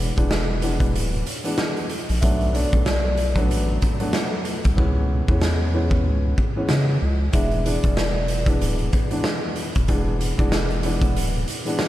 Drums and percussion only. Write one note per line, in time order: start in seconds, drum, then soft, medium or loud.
0.17 kick medium
0.17 closed hi-hat soft
0.31 snare loud
0.62 closed hi-hat medium
0.80 kick medium
0.80 closed hi-hat medium
0.95 closed hi-hat medium
1.12 closed hi-hat soft
1.26 closed hi-hat medium
1.45 closed hi-hat medium
1.58 snare loud
1.77 closed hi-hat soft
1.90 closed hi-hat medium
2.09 closed hi-hat medium
2.22 kick loud
2.22 closed hi-hat medium
2.41 closed hi-hat soft
2.55 closed hi-hat medium
2.73 kick loud
2.73 closed hi-hat soft
2.86 snare loud
3.17 closed hi-hat medium
3.36 kick medium
3.36 closed hi-hat medium
3.51 closed hi-hat medium
3.82 kick medium
3.82 closed hi-hat medium
4.00 closed hi-hat medium
4.13 snare loud
4.45 closed hi-hat medium
4.64 kick medium
4.64 closed hi-hat medium
4.78 kick loud
5.28 kick loud
5.42 snare loud
5.91 kick loud
6.38 kick medium
6.69 snare loud
7.33 kick loud
7.33 closed hi-hat medium
7.51 closed hi-hat soft
7.66 closed hi-hat medium
7.84 kick loud
7.84 closed hi-hat medium
7.97 snare loud
8.28 closed hi-hat medium
8.46 kick medium
8.46 closed hi-hat medium
8.61 closed hi-hat medium
8.78 closed hi-hat soft
8.93 kick medium
8.93 closed hi-hat medium
9.11 closed hi-hat medium
9.24 snare loud
9.56 closed hi-hat medium
9.75 kick medium
9.75 closed hi-hat medium
9.88 kick loud
9.88 closed hi-hat medium
10.21 closed hi-hat medium
10.39 kick medium
10.39 closed hi-hat soft
10.52 snare loud
10.70 closed hi-hat soft
10.83 closed hi-hat medium
11.02 kick medium
11.02 closed hi-hat medium
11.16 closed hi-hat medium
11.33 closed hi-hat soft
11.48 closed hi-hat medium
11.66 closed hi-hat medium
11.79 snare loud